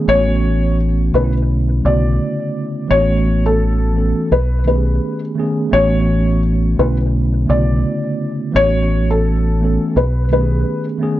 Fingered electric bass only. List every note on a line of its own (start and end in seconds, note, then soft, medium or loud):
0.08 1.10 A1 loud
1.14 1.81 B1 loud
1.85 2.18 B1 medium
2.90 4.12 A1 loud
4.32 4.98 B1 medium
5.73 6.75 A1 loud
6.79 7.46 B1 medium
7.49 7.83 B1 medium
8.55 9.77 A1 loud
9.96 10.63 B1 medium